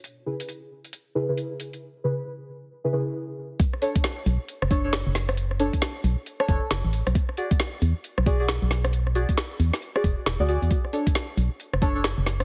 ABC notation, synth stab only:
X:1
M:4/4
L:1/16
Q:"Swing 16ths" 1/4=135
K:Bdor
V:1 name="Synth stab"
z2 [C,EGB] z6 z [C,EGB] [C,EGB] z4 | z2 [C,EGB] z6 [C,EGB] [C,EGB] z4 z | z2 [DAc] z6 z [DAc] [DAc] z4 | z2 [DAc] z6 [DAc] [DAc] z4 z |
z2 [FGd] z6 z [FGd] [FGd] z4 | z2 [FGd] z6 [FGd] z3 [FGd] [FGd] z | z2 [DAc] z6 z [DAc] [DAc] z4 |]